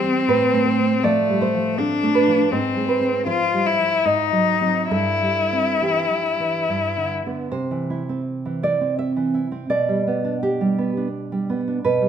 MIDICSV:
0, 0, Header, 1, 3, 480
1, 0, Start_track
1, 0, Key_signature, 0, "major"
1, 0, Tempo, 741656
1, 177, Time_signature, 3, 2, 24, 8
1, 1621, Tempo, 774194
1, 2581, Tempo, 887574
1, 3541, Tempo, 854701
1, 4501, Tempo, 732601
1, 5461, Tempo, 707547
1, 7553, End_track
2, 0, Start_track
2, 0, Title_t, "Cello"
2, 0, Program_c, 0, 42
2, 0, Note_on_c, 0, 60, 66
2, 667, Note_on_c, 0, 57, 57
2, 676, Note_off_c, 0, 60, 0
2, 1152, Note_on_c, 0, 62, 59
2, 1161, Note_off_c, 0, 57, 0
2, 1627, Note_on_c, 0, 60, 49
2, 1637, Note_off_c, 0, 62, 0
2, 2090, Note_off_c, 0, 60, 0
2, 2093, Note_on_c, 0, 65, 52
2, 2337, Note_on_c, 0, 64, 48
2, 2347, Note_off_c, 0, 65, 0
2, 2580, Note_on_c, 0, 63, 53
2, 2588, Note_off_c, 0, 64, 0
2, 3051, Note_off_c, 0, 63, 0
2, 3055, Note_on_c, 0, 64, 48
2, 4250, Note_off_c, 0, 64, 0
2, 7553, End_track
3, 0, Start_track
3, 0, Title_t, "Nylon-string guitar"
3, 0, Program_c, 1, 24
3, 0, Note_on_c, 1, 52, 60
3, 0, Note_on_c, 1, 55, 40
3, 0, Note_on_c, 1, 67, 66
3, 26, Note_on_c, 1, 60, 43
3, 117, Note_off_c, 1, 55, 0
3, 155, Note_off_c, 1, 52, 0
3, 170, Note_off_c, 1, 67, 0
3, 180, Note_off_c, 1, 60, 0
3, 183, Note_on_c, 1, 45, 55
3, 185, Note_on_c, 1, 71, 80
3, 341, Note_on_c, 1, 57, 43
3, 412, Note_off_c, 1, 71, 0
3, 424, Note_on_c, 1, 72, 53
3, 508, Note_on_c, 1, 60, 41
3, 600, Note_off_c, 1, 57, 0
3, 656, Note_off_c, 1, 72, 0
3, 672, Note_on_c, 1, 74, 71
3, 673, Note_on_c, 1, 53, 47
3, 765, Note_off_c, 1, 60, 0
3, 836, Note_on_c, 1, 55, 38
3, 901, Note_off_c, 1, 74, 0
3, 916, Note_on_c, 1, 72, 69
3, 928, Note_off_c, 1, 53, 0
3, 992, Note_off_c, 1, 55, 0
3, 1000, Note_on_c, 1, 53, 42
3, 1143, Note_off_c, 1, 72, 0
3, 1155, Note_on_c, 1, 60, 43
3, 1156, Note_on_c, 1, 69, 63
3, 1250, Note_off_c, 1, 53, 0
3, 1313, Note_on_c, 1, 57, 39
3, 1379, Note_off_c, 1, 69, 0
3, 1390, Note_on_c, 1, 71, 69
3, 1405, Note_off_c, 1, 60, 0
3, 1475, Note_on_c, 1, 53, 42
3, 1561, Note_off_c, 1, 57, 0
3, 1598, Note_off_c, 1, 45, 0
3, 1614, Note_off_c, 1, 71, 0
3, 1627, Note_off_c, 1, 53, 0
3, 1632, Note_on_c, 1, 44, 50
3, 1633, Note_on_c, 1, 72, 55
3, 1779, Note_on_c, 1, 56, 40
3, 1849, Note_off_c, 1, 72, 0
3, 1856, Note_on_c, 1, 71, 56
3, 1934, Note_on_c, 1, 60, 38
3, 2029, Note_off_c, 1, 56, 0
3, 2083, Note_off_c, 1, 71, 0
3, 2093, Note_on_c, 1, 53, 40
3, 2093, Note_on_c, 1, 72, 66
3, 2188, Note_off_c, 1, 60, 0
3, 2259, Note_on_c, 1, 55, 36
3, 2350, Note_off_c, 1, 53, 0
3, 2418, Note_off_c, 1, 55, 0
3, 2419, Note_on_c, 1, 53, 36
3, 2561, Note_off_c, 1, 44, 0
3, 2562, Note_off_c, 1, 72, 0
3, 2582, Note_on_c, 1, 44, 43
3, 2582, Note_on_c, 1, 75, 55
3, 2583, Note_off_c, 1, 53, 0
3, 2727, Note_on_c, 1, 54, 36
3, 2875, Note_off_c, 1, 54, 0
3, 2881, Note_on_c, 1, 54, 34
3, 2884, Note_on_c, 1, 60, 37
3, 3031, Note_off_c, 1, 54, 0
3, 3033, Note_off_c, 1, 60, 0
3, 3033, Note_off_c, 1, 75, 0
3, 3037, Note_off_c, 1, 44, 0
3, 3044, Note_on_c, 1, 43, 45
3, 3045, Note_on_c, 1, 69, 61
3, 3213, Note_on_c, 1, 55, 33
3, 3377, Note_on_c, 1, 60, 34
3, 3475, Note_off_c, 1, 55, 0
3, 3517, Note_off_c, 1, 69, 0
3, 3534, Note_on_c, 1, 52, 36
3, 3537, Note_on_c, 1, 67, 44
3, 3637, Note_off_c, 1, 60, 0
3, 3694, Note_off_c, 1, 52, 0
3, 3696, Note_on_c, 1, 53, 30
3, 3860, Note_off_c, 1, 53, 0
3, 3862, Note_on_c, 1, 52, 35
3, 4002, Note_off_c, 1, 43, 0
3, 4006, Note_off_c, 1, 67, 0
3, 4024, Note_on_c, 1, 43, 40
3, 4025, Note_off_c, 1, 52, 0
3, 4184, Note_on_c, 1, 50, 31
3, 4339, Note_off_c, 1, 50, 0
3, 4346, Note_on_c, 1, 50, 31
3, 4348, Note_on_c, 1, 59, 33
3, 4482, Note_off_c, 1, 50, 0
3, 4483, Note_off_c, 1, 59, 0
3, 4484, Note_off_c, 1, 43, 0
3, 4489, Note_on_c, 1, 48, 50
3, 4489, Note_on_c, 1, 72, 68
3, 4615, Note_on_c, 1, 52, 41
3, 4739, Note_on_c, 1, 64, 42
3, 4816, Note_off_c, 1, 52, 0
3, 4864, Note_on_c, 1, 60, 42
3, 4939, Note_off_c, 1, 64, 0
3, 5102, Note_on_c, 1, 52, 44
3, 5196, Note_off_c, 1, 72, 0
3, 5214, Note_off_c, 1, 60, 0
3, 5216, Note_on_c, 1, 64, 43
3, 5220, Note_on_c, 1, 74, 69
3, 5294, Note_off_c, 1, 52, 0
3, 5335, Note_on_c, 1, 60, 41
3, 5408, Note_off_c, 1, 64, 0
3, 5445, Note_off_c, 1, 74, 0
3, 5450, Note_on_c, 1, 76, 64
3, 5571, Note_on_c, 1, 52, 40
3, 5691, Note_on_c, 1, 64, 45
3, 5717, Note_off_c, 1, 60, 0
3, 5767, Note_off_c, 1, 52, 0
3, 5810, Note_on_c, 1, 60, 41
3, 5888, Note_off_c, 1, 64, 0
3, 5907, Note_off_c, 1, 48, 0
3, 5916, Note_off_c, 1, 76, 0
3, 5933, Note_on_c, 1, 74, 70
3, 5936, Note_off_c, 1, 60, 0
3, 5936, Note_on_c, 1, 47, 52
3, 6060, Note_on_c, 1, 55, 44
3, 6186, Note_on_c, 1, 59, 42
3, 6256, Note_off_c, 1, 55, 0
3, 6304, Note_on_c, 1, 62, 46
3, 6380, Note_off_c, 1, 59, 0
3, 6404, Note_off_c, 1, 74, 0
3, 6427, Note_on_c, 1, 67, 72
3, 6551, Note_on_c, 1, 55, 47
3, 6668, Note_on_c, 1, 59, 45
3, 6695, Note_off_c, 1, 62, 0
3, 6744, Note_off_c, 1, 55, 0
3, 6796, Note_on_c, 1, 62, 47
3, 6862, Note_off_c, 1, 59, 0
3, 7033, Note_on_c, 1, 55, 44
3, 7152, Note_on_c, 1, 59, 46
3, 7177, Note_off_c, 1, 62, 0
3, 7224, Note_off_c, 1, 55, 0
3, 7275, Note_on_c, 1, 62, 42
3, 7342, Note_off_c, 1, 59, 0
3, 7358, Note_off_c, 1, 47, 0
3, 7360, Note_off_c, 1, 67, 0
3, 7389, Note_on_c, 1, 71, 74
3, 7390, Note_off_c, 1, 62, 0
3, 7390, Note_on_c, 1, 47, 60
3, 7504, Note_on_c, 1, 55, 43
3, 7553, Note_off_c, 1, 47, 0
3, 7553, Note_off_c, 1, 55, 0
3, 7553, Note_off_c, 1, 71, 0
3, 7553, End_track
0, 0, End_of_file